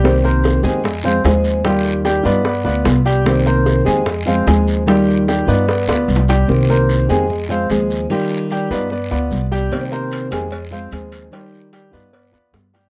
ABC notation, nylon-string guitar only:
X:1
M:4/4
L:1/8
Q:1/4=149
K:Cm
V:1 name="Nylon-string guitar"
[C,E,B,CG]3 [E,B,CG] z [F,A,CF] [F,A,CF]2 | [E,G,EF]3 [G,EF] z [=B,F] [G,B,F]2 | [C,E,B,CG]3 [E,B,CG] z [F,A,CF] [F,A,CF]2 | [E,G,EF]3 [G,EF] z [=B,F] [G,B,F]2 |
[C,E,B,CG]3 [E,B,CG] z [F,A,CF] [F,A,CF]2 | [E,G,EF]3 [G,EF] z [=B,F] [G,B,F]2 | [C,E,B,CG]3 [E,B,CG] z [F,A,CF] [F,A,CF]2 | [E,G,EF]3 [G,EF] z [=B,F] [G,B,F]2 |]